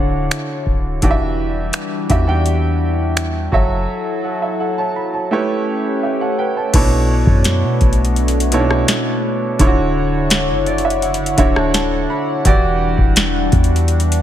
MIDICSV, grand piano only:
0, 0, Header, 1, 2, 480
1, 0, Start_track
1, 0, Key_signature, 2, "minor"
1, 0, Tempo, 714286
1, 687, Time_signature, 4, 2, 24, 8
1, 9557, End_track
2, 0, Start_track
2, 0, Title_t, "Grand piano"
2, 0, Program_c, 0, 0
2, 0, Control_c, 0, 64, 127
2, 0, Note_on_c, 0, 50, 79
2, 0, Note_on_c, 0, 62, 74
2, 0, Note_on_c, 0, 66, 71
2, 0, Note_on_c, 0, 73, 72
2, 0, Note_on_c, 0, 76, 90
2, 0, Note_on_c, 0, 77, 72
2, 0, Note_on_c, 0, 78, 89
2, 432, Note_off_c, 0, 50, 0
2, 434, Note_off_c, 0, 62, 0
2, 436, Note_off_c, 0, 66, 0
2, 437, Note_off_c, 0, 73, 0
2, 461, Note_off_c, 0, 78, 0
2, 685, Note_on_c, 0, 52, 86
2, 690, Note_on_c, 0, 62, 78
2, 693, Note_on_c, 0, 66, 76
2, 695, Note_on_c, 0, 67, 73
2, 696, Note_off_c, 0, 76, 0
2, 696, Control_c, 0, 64, 0
2, 698, Note_off_c, 0, 77, 0
2, 700, Note_on_c, 0, 74, 71
2, 737, Note_off_c, 0, 74, 0
2, 743, Note_on_c, 0, 76, 93
2, 812, Control_c, 0, 64, 127
2, 1306, Note_off_c, 0, 52, 0
2, 1308, Note_off_c, 0, 62, 0
2, 1310, Note_off_c, 0, 66, 0
2, 1311, Note_off_c, 0, 67, 0
2, 1335, Note_off_c, 0, 76, 0
2, 1403, Note_on_c, 0, 52, 80
2, 1406, Note_on_c, 0, 62, 76
2, 1410, Note_on_c, 0, 66, 69
2, 1413, Note_on_c, 0, 67, 78
2, 1417, Note_on_c, 0, 76, 89
2, 1508, Note_off_c, 0, 52, 0
2, 1510, Note_off_c, 0, 62, 0
2, 1512, Note_off_c, 0, 66, 0
2, 1513, Note_off_c, 0, 67, 0
2, 1515, Note_off_c, 0, 76, 0
2, 1524, Note_on_c, 0, 52, 76
2, 1528, Note_on_c, 0, 62, 74
2, 1531, Note_on_c, 0, 78, 71
2, 1535, Note_on_c, 0, 67, 75
2, 1537, Note_on_c, 0, 79, 92
2, 2352, Note_off_c, 0, 52, 0
2, 2354, Note_off_c, 0, 62, 0
2, 2355, Note_off_c, 0, 78, 0
2, 2357, Note_off_c, 0, 67, 0
2, 2358, Note_off_c, 0, 79, 0
2, 2364, Note_on_c, 0, 54, 83
2, 2367, Note_on_c, 0, 66, 78
2, 2371, Note_on_c, 0, 69, 76
2, 2374, Note_on_c, 0, 73, 78
2, 2376, Control_c, 0, 64, 0
2, 2379, Note_on_c, 0, 76, 94
2, 2504, Control_c, 0, 64, 127
2, 2845, Note_off_c, 0, 69, 0
2, 2851, Note_off_c, 0, 73, 0
2, 2851, Note_on_c, 0, 78, 60
2, 2853, Note_off_c, 0, 76, 0
2, 2855, Note_on_c, 0, 69, 51
2, 2963, Note_off_c, 0, 78, 0
2, 2965, Note_off_c, 0, 69, 0
2, 2972, Note_on_c, 0, 76, 63
2, 3083, Note_off_c, 0, 76, 0
2, 3092, Note_on_c, 0, 78, 63
2, 3095, Note_on_c, 0, 69, 55
2, 3192, Note_off_c, 0, 54, 0
2, 3193, Note_off_c, 0, 66, 0
2, 3203, Note_off_c, 0, 78, 0
2, 3205, Note_off_c, 0, 69, 0
2, 3212, Note_on_c, 0, 81, 73
2, 3217, Note_on_c, 0, 73, 59
2, 3324, Note_off_c, 0, 81, 0
2, 3326, Note_off_c, 0, 73, 0
2, 3333, Note_on_c, 0, 83, 64
2, 3444, Note_off_c, 0, 83, 0
2, 3452, Note_on_c, 0, 81, 60
2, 3457, Note_on_c, 0, 73, 47
2, 3568, Note_on_c, 0, 57, 87
2, 3571, Note_on_c, 0, 64, 76
2, 3572, Note_off_c, 0, 73, 0
2, 3575, Note_on_c, 0, 67, 73
2, 3576, Control_c, 0, 64, 0
2, 3578, Note_on_c, 0, 71, 72
2, 3582, Note_on_c, 0, 73, 96
2, 3678, Note_off_c, 0, 81, 0
2, 3701, Control_c, 0, 64, 127
2, 3811, Note_off_c, 0, 67, 0
2, 3812, Note_off_c, 0, 71, 0
2, 3815, Note_off_c, 0, 73, 0
2, 4054, Note_on_c, 0, 76, 58
2, 4057, Note_on_c, 0, 67, 51
2, 4164, Note_off_c, 0, 76, 0
2, 4166, Note_off_c, 0, 67, 0
2, 4174, Note_on_c, 0, 78, 69
2, 4179, Note_on_c, 0, 69, 57
2, 4285, Note_off_c, 0, 78, 0
2, 4287, Note_off_c, 0, 69, 0
2, 4291, Note_on_c, 0, 79, 69
2, 4295, Note_on_c, 0, 71, 59
2, 4394, Note_off_c, 0, 57, 0
2, 4396, Note_off_c, 0, 64, 0
2, 4403, Note_off_c, 0, 79, 0
2, 4405, Note_off_c, 0, 71, 0
2, 4413, Note_on_c, 0, 81, 60
2, 4416, Note_on_c, 0, 73, 47
2, 4525, Note_on_c, 0, 47, 89
2, 4529, Note_off_c, 0, 73, 0
2, 4529, Note_on_c, 0, 59, 82
2, 4531, Note_on_c, 0, 62, 82
2, 4534, Control_c, 0, 64, 0
2, 4534, Note_on_c, 0, 64, 80
2, 4536, Note_on_c, 0, 69, 84
2, 4539, Note_on_c, 0, 73, 101
2, 4638, Note_off_c, 0, 81, 0
2, 4648, Control_c, 0, 64, 127
2, 5352, Note_off_c, 0, 47, 0
2, 5354, Note_off_c, 0, 59, 0
2, 5355, Note_off_c, 0, 62, 0
2, 5357, Note_off_c, 0, 64, 0
2, 5358, Note_off_c, 0, 69, 0
2, 5359, Note_off_c, 0, 73, 0
2, 5725, Note_on_c, 0, 47, 83
2, 5728, Note_on_c, 0, 59, 78
2, 5730, Note_on_c, 0, 61, 62
2, 5734, Note_on_c, 0, 64, 75
2, 5737, Note_on_c, 0, 69, 77
2, 5739, Note_on_c, 0, 73, 93
2, 5772, Note_off_c, 0, 61, 0
2, 5774, Note_on_c, 0, 62, 77
2, 6346, Note_off_c, 0, 47, 0
2, 6348, Note_off_c, 0, 59, 0
2, 6350, Note_off_c, 0, 64, 0
2, 6352, Note_off_c, 0, 69, 0
2, 6353, Note_off_c, 0, 73, 0
2, 6370, Note_off_c, 0, 62, 0
2, 6443, Note_on_c, 0, 50, 89
2, 6446, Note_on_c, 0, 62, 81
2, 6450, Note_on_c, 0, 64, 83
2, 6454, Note_on_c, 0, 65, 66
2, 6456, Control_c, 0, 64, 0
2, 6458, Note_on_c, 0, 73, 102
2, 6494, Note_off_c, 0, 65, 0
2, 6498, Note_on_c, 0, 66, 84
2, 6584, Control_c, 0, 64, 127
2, 7171, Note_on_c, 0, 74, 74
2, 7272, Note_off_c, 0, 50, 0
2, 7273, Note_off_c, 0, 62, 0
2, 7275, Note_off_c, 0, 64, 0
2, 7279, Note_off_c, 0, 73, 0
2, 7280, Note_off_c, 0, 74, 0
2, 7290, Note_on_c, 0, 76, 72
2, 7299, Note_off_c, 0, 66, 0
2, 7400, Note_off_c, 0, 76, 0
2, 7411, Note_on_c, 0, 78, 72
2, 7632, Note_off_c, 0, 78, 0
2, 7642, Note_on_c, 0, 50, 87
2, 7646, Note_on_c, 0, 62, 77
2, 7650, Note_on_c, 0, 64, 77
2, 7650, Note_on_c, 0, 76, 73
2, 7653, Note_on_c, 0, 66, 76
2, 7656, Note_on_c, 0, 73, 98
2, 7760, Note_off_c, 0, 76, 0
2, 7769, Note_on_c, 0, 81, 71
2, 7879, Note_off_c, 0, 81, 0
2, 7889, Note_on_c, 0, 81, 73
2, 8111, Note_off_c, 0, 81, 0
2, 8130, Note_on_c, 0, 83, 73
2, 8265, Note_off_c, 0, 50, 0
2, 8266, Note_off_c, 0, 62, 0
2, 8268, Note_off_c, 0, 64, 0
2, 8270, Note_off_c, 0, 66, 0
2, 8271, Note_off_c, 0, 73, 0
2, 8352, Note_off_c, 0, 83, 0
2, 8364, Note_on_c, 0, 52, 84
2, 8366, Note_on_c, 0, 64, 82
2, 8370, Note_on_c, 0, 66, 84
2, 8374, Note_on_c, 0, 67, 83
2, 8376, Control_c, 0, 64, 0
2, 8377, Note_on_c, 0, 74, 99
2, 8504, Control_c, 0, 64, 127
2, 9192, Note_off_c, 0, 52, 0
2, 9193, Note_off_c, 0, 64, 0
2, 9195, Note_off_c, 0, 66, 0
2, 9197, Note_off_c, 0, 67, 0
2, 9198, Note_off_c, 0, 74, 0
2, 9557, End_track
0, 0, End_of_file